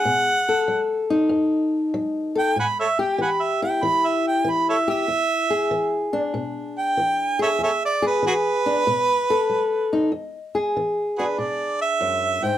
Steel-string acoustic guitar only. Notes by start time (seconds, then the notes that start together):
0.05 B2
0.49 A4
0.68 F#3
1.10 D#4
1.29 F#2
1.94 F#3
2.35 A4
2.56 A2
2.99 G4
3.18 E3
3.62 E4
3.83 E3
4.44 E3
4.88 G4
5.08 E2
5.50 G#4
5.71 E3
6.13 D4
6.34 B2
6.97 E3
7.39 G#4
7.59 E2
8.02 G#4
8.23 E3
8.66 D4
8.87 B2
9.30 A4
9.49 F#3
9.93 D#4
10.12 E2
10.55 G#4
10.77 E3
11.19 D4
11.38 B2
12.01 F#2
12.43 G#2